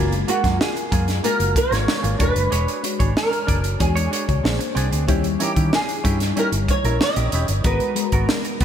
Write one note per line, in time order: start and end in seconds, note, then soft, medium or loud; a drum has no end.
0.00 0.23 F#1 medium
0.00 0.22 G#3 medium
0.00 0.13 A#3 medium
0.00 0.14 F4 medium
0.00 0.22 F4 medium
0.00 0.22 F#4 medium
0.00 0.14 G#4 medium
0.00 0.22 A#4 medium
0.12 closed hi-hat soft
0.28 1.07 G#3 medium
0.28 0.41 A#3 medium
0.28 0.42 F4 medium
0.28 1.07 F#4 medium
0.28 0.61 F#4 medium
0.28 1.07 A#4 medium
0.28 0.42 A#4 medium
0.28 1.07 F5 medium
0.28 closed hi-hat medium
0.44 0.58 F#2 medium
0.44 0.58 A#3 soft
0.44 0.58 F4 medium
0.44 0.57 G#4 medium
0.44 kick medium
0.44 snare soft
0.44 closed hi-hat soft
0.61 1.27 G#4 medium
0.61 snare loud
0.76 muted clean electric guitar stroke soft
0.76 closed hi-hat soft
0.92 1.19 F#2 medium
0.92 1.09 A#3 medium
0.92 1.08 F4 medium
0.92 1.07 G#4 medium
0.92 kick medium
0.92 closed hi-hat medium
1.08 muted clean electric guitar stroke soft
1.08 snare soft
1.08 closed hi-hat soft
1.23 1.63 G#3 medium
1.23 1.41 A#3 medium
1.23 1.63 F4 medium
1.23 1.40 F4 medium
1.23 1.64 F#4 medium
1.23 1.38 G#4 medium
1.23 1.64 A#4 medium
1.23 1.57 A#4 medium
1.23 closed hi-hat medium
1.40 1.53 F#1 medium
1.40 muted clean electric guitar stroke soft
1.40 closed hi-hat soft
1.55 2.22 C#5 medium
1.55 muted clean electric guitar stroke soft
1.55 kick medium
1.55 closed hi-hat medium
1.71 1.85 G#1 medium
1.71 2.18 G#3 medium
1.71 1.86 A#3 soft
1.71 2.20 F4 medium
1.71 1.86 F4 soft
1.71 2.19 F#4 medium
1.71 1.85 A#4 medium
1.71 2.21 A#4 medium
1.71 snare soft
1.71 closed hi-hat soft
1.87 muted clean electric guitar stroke soft
1.87 snare medium
2.03 2.17 G#1 medium
2.03 2.18 A#3 soft
2.03 2.18 F4 medium
2.03 2.17 G#4 medium
2.03 closed hi-hat medium
2.19 2.33 E1 medium
2.19 2.72 G#3 medium
2.19 2.37 D4 medium
2.19 2.72 D4 medium
2.19 2.73 F#4 medium
2.19 2.35 G#4 medium
2.19 2.81 B4 medium
2.19 2.73 C#5 medium
2.19 2.34 C#5 medium
2.19 kick medium
2.19 closed hi-hat medium
2.35 2.50 F#1 medium
2.35 muted clean electric guitar stroke soft
2.35 closed hi-hat medium
2.51 2.66 E1 medium
2.51 2.81 D4 medium
2.51 2.81 G#4 medium
2.51 2.82 C#5 medium
2.51 closed hi-hat medium
2.68 closed hi-hat soft
2.83 3.62 G#3 medium
2.83 3.63 D4 medium
2.83 3.63 F#4 medium
2.83 3.63 C#5 medium
2.83 muted clean electric guitar stroke soft
2.83 closed hi-hat medium
3.00 3.14 G#1 medium
3.00 3.14 D4 soft
3.00 3.14 G#4 soft
3.00 3.13 C#5 medium
3.00 kick medium
3.00 closed hi-hat soft
3.16 3.77 A#4 medium
3.16 muted clean electric guitar stroke soft
3.16 snare loud
3.31 muted clean electric guitar stroke soft
3.31 closed hi-hat medium
3.47 3.75 F#1 medium
3.47 3.65 D4 medium
3.47 3.64 G#4 medium
3.47 3.63 D5 medium
3.47 kick medium
3.47 closed hi-hat medium
3.64 muted clean electric guitar stroke soft
3.64 closed hi-hat soft
3.79 4.07 E2 medium
3.79 4.19 G#3 medium
3.79 4.20 D4 medium
3.79 4.20 F#4 medium
3.79 4.41 G#4 medium
3.79 4.20 C#5 medium
3.79 muted clean electric guitar stroke soft
3.79 kick medium
3.79 closed hi-hat medium
3.96 4.10 D4 medium
3.96 4.11 G#4 medium
3.96 4.12 C#5 medium
3.96 closed hi-hat medium
4.11 4.25 D4 medium
4.11 4.26 G#4 medium
4.11 4.26 C#5 medium
4.11 closed hi-hat medium
4.27 4.42 C#2 medium
4.27 4.44 G#3 medium
4.27 4.44 D4 medium
4.27 4.45 F#4 medium
4.27 4.45 C#5 medium
4.27 muted clean electric guitar stroke soft
4.27 kick medium
4.27 closed hi-hat soft
4.43 4.58 A#1 medium
4.43 4.97 A#3 medium
4.43 4.51 C#4 soft
4.43 4.97 G#4 medium
4.43 4.97 C5 medium
4.43 muted clean electric guitar stroke soft
4.43 snare medium
4.50 5.00 D4 medium
4.59 muted clean electric guitar stroke soft
4.59 closed hi-hat medium
4.75 4.90 C2 medium
4.75 4.92 C4 medium
4.75 4.91 D4 medium
4.75 4.90 G#4 medium
4.75 closed hi-hat medium
4.91 5.08 D2 medium
4.91 5.06 C4 medium
4.91 5.06 D4 medium
4.91 5.05 G#4 medium
4.91 closed hi-hat medium
5.07 5.35 D#2 loud
5.07 5.34 G3 medium
5.07 5.25 C#4 medium
5.07 5.34 D#4 medium
5.07 5.35 E4 medium
5.07 5.26 E4 medium
5.07 5.26 G4 medium
5.07 5.35 C#5 medium
5.07 kick loud
5.07 closed hi-hat medium
5.24 closed hi-hat soft
5.39 6.19 E3 medium
5.39 5.53 C#4 medium
5.39 6.19 D#4 medium
5.39 5.54 E4 medium
5.39 6.19 E4 medium
5.39 5.74 G4 medium
5.39 5.54 A#4 medium
5.39 6.19 C#5 medium
5.39 closed hi-hat medium
5.55 5.70 D#3 medium
5.55 5.71 C#4 soft
5.55 5.70 E4 medium
5.55 5.69 G4 medium
5.55 kick medium
5.55 closed hi-hat soft
5.73 6.40 G#4 medium
5.73 snare loud
5.88 muted clean electric guitar stroke soft
5.88 closed hi-hat medium
6.04 6.31 G2 medium
6.04 6.21 C#4 medium
6.04 6.21 E4 medium
6.04 6.19 G4 medium
6.04 kick medium
6.04 closed hi-hat medium
6.20 muted clean electric guitar stroke soft
6.20 snare soft
6.20 closed hi-hat medium
6.36 6.76 G3 medium
6.36 6.53 C#4 medium
6.36 6.76 D#4 medium
6.36 6.76 E4 medium
6.36 6.53 E4 medium
6.36 6.52 G4 medium
6.36 6.47 A#4 medium
6.36 6.76 C#5 medium
6.36 closed hi-hat medium
6.52 6.66 G1 medium
6.52 muted clean electric guitar stroke soft
6.52 closed hi-hat medium
6.69 7.02 C#5 medium
6.69 muted clean electric guitar stroke soft
6.69 kick medium
6.69 closed hi-hat medium
6.84 6.98 A#1 medium
6.84 7.50 G3 medium
6.84 6.99 C#4 soft
6.84 7.50 D#4 medium
6.84 7.50 E4 medium
6.84 6.99 E4 medium
6.84 6.98 A#4 medium
6.84 7.50 A#4 medium
6.84 closed hi-hat soft
7.01 7.68 D#5 medium
7.01 snare loud
7.16 7.30 A#1 medium
7.16 7.31 C#4 soft
7.16 7.31 E4 soft
7.16 7.30 G4 medium
7.16 closed hi-hat medium
7.32 7.46 E1 medium
7.32 7.50 C#4 medium
7.32 7.49 E4 medium
7.32 7.48 G4 medium
7.32 closed hi-hat medium
7.48 7.62 G1 medium
7.48 muted clean electric guitar stroke soft
7.48 closed hi-hat medium
7.64 7.78 G#1 loud
7.64 7.90 G#3 medium
7.64 7.91 B3 medium
7.64 7.94 B3 medium
7.64 7.91 F#4 medium
7.64 7.95 F#4 medium
7.64 7.91 A#4 medium
7.64 7.95 A#4 medium
7.64 8.65 B4 medium
7.64 kick medium
7.64 closed hi-hat medium
7.80 closed hi-hat soft
7.95 8.65 G#3 medium
7.95 8.65 B3 medium
7.95 8.65 F#4 medium
7.95 8.65 A#5 medium
7.95 muted clean electric guitar stroke soft
7.95 closed hi-hat medium
8.12 8.26 G#1 medium
8.12 8.27 B3 soft
8.12 8.27 F#4 medium
8.12 8.26 A#4 medium
8.12 kick medium
8.12 closed hi-hat soft
8.29 snare loud
8.45 muted clean electric guitar stroke soft
8.45 closed hi-hat medium
8.61 8.65 B1 medium
8.61 8.65 B3 medium
8.61 kick medium
8.61 closed hi-hat medium